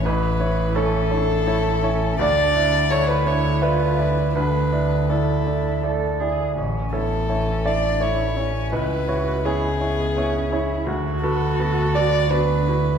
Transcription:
<<
  \new Staff \with { instrumentName = "Violin" } { \time 3/4 \key a \major \tempo 4 = 83 b'4 a'2 | d''4 cis''16 b'16 cis''8 b'4 | b'4 a'4 r4 | r8 a'4 d''8 cis''4 |
b'4 gis'2 | r8 a'4 d''8 b'4 | }
  \new Staff \with { instrumentName = "Upright piano" } { \time 3/4 \key a \major << { b'4 a'2 | d''4 cis''16 b'16 cis''8 b'4 | b'4 a'4 r4 | r8 a'4 d''8 cis''4 |
b'4 gis'2 | r8 a'4 d''8 b'4 | } \\ { a,,8 <e' cis''>8 <a e' cis''>8 <e' cis''>8 <a e' cis''>8 <e' cis''>8 | d,8 <e' d''>8 <a e' d''>8 <d' e'>8 <a d'' e''>8 <e' d''>8 | d,8 <e' d''>8 <a e' d''>8 <e' d''>8 <a e' d''>8 <e' d''>8 | a,,8 <e' cis''>8 <a e' cis''>8 <e' e''>8 <a e'>8 <e' cis''>8 |
cis,8 <e' cis''>8 <b e' cis''>8 <e' cis''>8 <b e' cis''>8 <e' cis''>8 | d,8 <fis' b'>8 <b fis' b'>8 <fis' b'>8 <b fis'>8 <fis' b'>8 | } >> }
  \new Staff \with { instrumentName = "Cello" } { \time 3/4 \key a \major e'4 cis'8 d'8 e'8 cis'8 | d'4 e'4 f'8 e'8 | d'4 e'4 a'8 gis'8 | cis'8 b8 cis'8 d'8 e'8 cis'8 |
e'8 fis'8 e'8 b8 cis'8 e'8 | fis'2 d'8 e'8 | }
  \new Staff \with { instrumentName = "Double bass" } { \clef bass \time 3/4 \key a \major a,,2. | d,2.~ | d,2. | a,,2. |
cis,2. | d,2. | }
>>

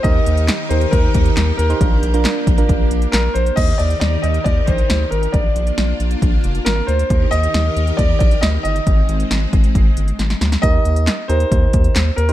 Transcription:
<<
  \new Staff \with { instrumentName = "Grand piano" } { \time 4/4 \key ees \major \tempo 4 = 136 ees''4. c''8 bes'4. bes'8~ | bes'2. bes'8 c''8 | ees''8 d''8 d''8 ees''8 d''8 c''4 bes'8 | d''4. r4. bes'8 c''8~ |
c''8 ees''4. d''8 d''8 ees''8 ees''8~ | ees''2. r4 | ees''4. c''2 bes'8 | }
  \new Staff \with { instrumentName = "Synth keys" } { \time 4/4 \key ees \major <ees' g' bes'>4 r8 <ees' g' bes'>4. r8. <ees' g' c''>16 | <d' f' bes'>8 r16 <d' f' bes'>8. r16 <d' f' bes'>4. r8. | r1 | r1 |
r1 | r1 | <ees' g' bes'>4 r8 <ees' g' bes'>4. r8. <ees' g' c''>16 | }
  \new Staff \with { instrumentName = "String machine" } { \time 4/4 \key ees \major <ees ees' g' bes'>1 | <bes d'>1 | <ees ees' g' bes'>1 | <bes d' f'>1 |
<ees ees' g' bes'>1 | <aes c'>1 | r1 | }
  \new Staff \with { instrumentName = "Analog synth bass" } { \clef bass \time 4/4 \key ees \major ees,8 ees,8. r16 ees,8 ees,8 ees,8 ees,8 ees,8 | bes,,8 bes,,8. r16 bes,,8 bes,,8 bes,,8 bes,,8 bes,,8 | ees,8 ees,8 ees,8 ees,8 ees,8 bes,,8 d,8 aes,,8 | bes,,8 bes,,8 bes,,8 bes,,8 bes,,8 f,,8 aes,,8 d,8 |
ees,8 ees,8 ees,8 ees,8 ees,8 bes,,8 d,8 g,,8 | aes,,8 aes,,8 aes,,8 aes,,8 aes,,8 g,,8 aes,,8 d,8 | ees,8 ees,8. r16 ees,8 ees,8 ees,8 ees,8 ees,8 | }
  \new DrumStaff \with { instrumentName = "Drums" } \drummode { \time 4/4 <hh bd>8 hh16 hh16 <hc hh sn>8 hh16 hh16 <hh bd>8 <hh bd>16 hh16 <hc hh sn>8 hh16 hh16 | <hh bd>8 hh16 hh16 <hc hh sn>8 <hh bd>16 hh16 <hh bd>8 hh16 hh16 <hc hh sn>8 hh16 hh16 | <cymc hh bd>8 hh16 hh16 <hh sn>8 hh16 hh16 <hh bd>8 <hh bd>16 hh16 <hh sn>8 hh16 hh16 | <hh bd>8 hh16 hh16 <hh sn>8 hh16 hh16 <hh bd>8 hh16 hh16 <hh sn>8 hh16 hh16 |
<hh bd>8 hh16 hh16 <hh sn>8 hh16 hh16 <hh bd>8 <hh bd>16 hh16 <hh sn>8 hh16 hh16 | <hh bd>8 hh16 hh16 <hh sn>8 <hh bd>16 hh16 <hh bd>8 hh16 hh16 <hh sn>16 sn16 <hh sn>16 <hh sn>16 | <hh bd>8 hh16 hh16 <hc hh sn>8 hh16 hh16 <hh bd>8 <hh bd>16 hh16 <hc hh sn>8 hh16 hh16 | }
>>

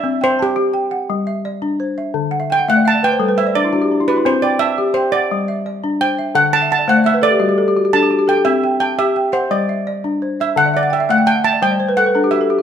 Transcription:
<<
  \new Staff \with { instrumentName = "Steel pan" } { \time 12/8 \key g \major \tempo 4. = 114 e''8 c''8 g'2~ g'8 r2 r8 | r4 g''8 fis''8 a''8 g''4 e''8 d''4. b'8 | c''8 d''8 e''4 c''8 d''4 r4. g''4 | fis''8 a''8 a''8 fis''8 e''8 d''2 a''8 r8 g''8 |
e''4 g''8 e''4 c''8 d''4. r4 e''8 | fis''8 d''8 e''8 fis''8 g''8 a''8 g''4 fis''4 e''4 | }
  \new Staff \with { instrumentName = "Balafon" } { \time 12/8 \key g \major << { e''8 g''8 a''4 g''8 fis''4 e''8 d''4 c''8 e''8~ | e''8 r1 r4. | r8 g''8 a''4 g''8 fis''4 e''8 d''4 c''8 e''8~ | e''8 r1 r4. |
r8 g''8 a''4 g''8 fis''4 e''8 d''4 c''8 e''8~ | e''8 r1 r4. | } \\ { r1. | r8 fis''16 e''16 g''16 fis''16 e''16 d''16 e''16 d''16 b'16 c''16 a'16 b'16 c''16 d''16 d'16 e'16 fis'16 g'16 d'16 e'16 fis'16 e'16~ | e'16 r1 r4. r16 | r8. e''16 fis''16 d''16 c''16 d''16 e''16 b'16 a'16 g'16 fis'16 g'16 a'16 g'16 fis'16 g'16 a'16 g'16 fis'16 g'16 a'16 g'16~ |
g'16 r1 r4. r16 | r16 d''16 e''16 fis''16 g''16 e''16 fis''16 g''16 a''16 fis''16 e''16 d''16 c''16 d''16 c''16 b'16 a'16 b'16 a'16 g'16 fis'16 a'16 g'16 fis'16 | } >> }
  \new Staff \with { instrumentName = "Balafon" } { \time 12/8 \key g \major c'4 r8 g'4 r8 g4 r8 d'4 r8 | d4 r8 a4 r8 g4 r8 d'4 r8 | c'4 r8 g'4 r8 g4 r8 d'4 r8 | d4 r8 a4 r8 g4 r8 d'4 r8 |
c'4 r8 g'4 r8 g4 r8 d'4 r8 | d4 r8 a4 r8 g4 r8 d'4 r8 | }
>>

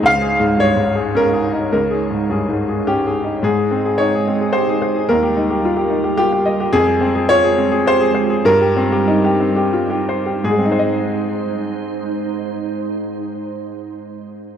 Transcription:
<<
  \new Staff \with { instrumentName = "Grand piano" } { \time 3/4 \key aes \major \tempo 4 = 104 << { f''4 des''4 bes'4 | bes'4 aes'4 g'4 | aes'4 des''4 c''4 | bes'4. r8 g'4 |
aes'4 des''4 c''4 | bes'4. r4. | <aes, aes c' ees' aes' c'' ees''>2.~ | <aes, aes c' ees' aes' c'' ees''>2. | } \\ { \tuplet 3/2 { des,8 aes'8 aes,8 g,8 aes,8 aes'8 des'8 aes'8 ees'8 } | \tuplet 3/2 { des,8 aes'8 aes,8 g,8 aes,8 aes'8 des'8 aes'8 ees'8 } | aes,16 aes'16 c'16 aes'16 ees'16 aes'16 c'16 aes'16 g'16 aes'16 c''16 aes'16 | ees,16 g'16 ees'16 g'16 f'16 g'16 ees'16 g'16 f'16 g'16 ees''16 g'16 |
f,16 aes'16 c'16 aes'16 f'16 aes'16 c'16 aes'16 g'16 aes'16 c''16 aes'16 | g,16 g'16 c'16 g'16 ees'16 g'16 c'16 g'16 f'16 g'16 c''16 g'16 | r2. | r2. | } >> }
  \new Staff \with { instrumentName = "Ambient pad" } { \time 3/4 \key aes \major << { <aes des''>2.~ | <aes des''>2. | <aes ees''>2. | <g bes'>2. |
aes2. | g2. | <aes c''>2.~ | <aes c''>2. | } \\ { ees'2.~ | ees'2. | ees'2. | f'2.~ |
f'2. | ees'2. | ees'2.~ | ees'2. | } >> }
>>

